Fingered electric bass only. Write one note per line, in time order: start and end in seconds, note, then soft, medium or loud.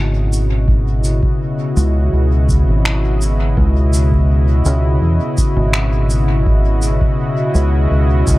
0.00 1.19 G#1 medium
1.77 2.09 C#2 medium
2.13 2.64 C#2 medium
2.68 3.54 G#1 medium
3.57 4.62 C#2 medium
4.66 4.98 C#2 medium
5.02 5.18 E2 medium
5.56 6.98 G#1 medium
7.55 7.87 C#2 medium
7.91 8.27 C#2 medium
8.27 8.39 C#2 medium